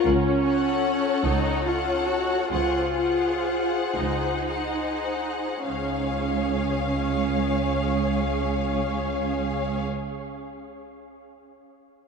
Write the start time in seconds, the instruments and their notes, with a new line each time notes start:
0.04 double bass section C#2, cello section C#2, viola section C#4
0.44 violin section A4 C#5 F#5
1.24 double bass section C#2, cello section C#2, viola section D#4
1.65 viola section F4, violin section A4 C#5 F#5
2.07 viola section F#4
2.50 double bass section C#2, cello section C#2, viola section F4, violin section G#4 C5 F#5
2.97 violin section G#4 C5 F#5
3.95 double bass section C#2, cello section C#2, viola section D#4
4.50 violin section G#4 C5 F#5
5.65 double bass section C#2, cello section C#2, viola section C#4, violin section G#4 C#5 F5